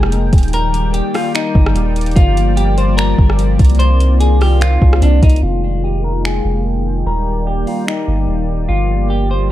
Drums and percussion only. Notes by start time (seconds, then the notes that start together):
0.03 cross-stick
0.12 closed hi-hat
0.33 kick, closed hi-hat
0.38 closed hi-hat
0.43 closed hi-hat
0.48 closed hi-hat
0.53 closed hi-hat
0.74 closed hi-hat
0.94 closed hi-hat
1.14 cross-stick, open hi-hat
1.35 finger snap, closed hi-hat
1.55 kick
1.66 cross-stick
1.76 closed hi-hat
1.96 closed hi-hat
2.01 closed hi-hat
2.06 closed hi-hat
2.11 closed hi-hat
2.16 kick, closed hi-hat
2.37 closed hi-hat
2.57 closed hi-hat
2.78 closed hi-hat
2.98 finger snap, closed hi-hat
3.18 kick
3.30 cross-stick
3.39 closed hi-hat
3.59 kick, closed hi-hat
3.65 closed hi-hat
3.70 closed hi-hat
3.75 closed hi-hat
3.80 closed hi-hat
4.00 closed hi-hat
4.21 closed hi-hat
4.41 cross-stick, open hi-hat
4.61 finger snap, closed hi-hat
4.82 kick
4.93 cross-stick
5.02 closed hi-hat
5.23 kick, closed hi-hat
5.30 closed hi-hat
5.36 closed hi-hat
6.25 finger snap
7.67 open hi-hat
7.88 finger snap